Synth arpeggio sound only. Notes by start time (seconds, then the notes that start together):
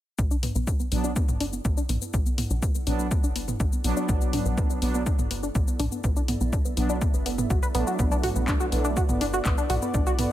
0.19 B3
0.31 D4
0.43 B3
0.55 B3
0.67 D4
0.80 B3
0.92 B3
1.04 D4
1.16 B3
1.29 B3
1.41 D4
1.53 B3
1.65 B3
1.77 D4
1.89 B3
2.02 B3
2.14 D4
2.26 B3
2.38 B3
2.51 D4
2.62 B3
2.75 B3
2.87 D4
2.99 B3
3.11 B3
3.24 D4
3.36 B3
3.48 B3
3.60 D4
3.72 B3
3.84 B3
3.97 D4
4.09 B3
4.21 B3
4.33 D4
4.46 B3
4.58 B3
4.70 D4
4.82 B3
4.94 B3
5.06 D4
5.19 B3
5.31 B3
5.43 D4
5.55 B3
5.68 B3
5.80 D4
5.92 B3
6.04 B3
6.16 D4
6.28 B3
6.41 B3
6.53 D4
6.65 B3
6.77 B3
6.90 D4
7.01 B3
7.14 B3
7.26 B3
7.38 B3
7.50 F#4
7.63 B4
7.75 B3
7.87 F#4
7.99 B3
8.12 D4
8.23 F#4
8.36 B3
8.48 D4
8.60 F#4
8.72 B3
8.85 D4
8.97 F#4
9.09 B3
9.21 D4
9.33 F#4
9.45 B3
9.58 D4
9.70 F#4
9.82 B3
9.94 D4
10.07 F#4
10.19 B3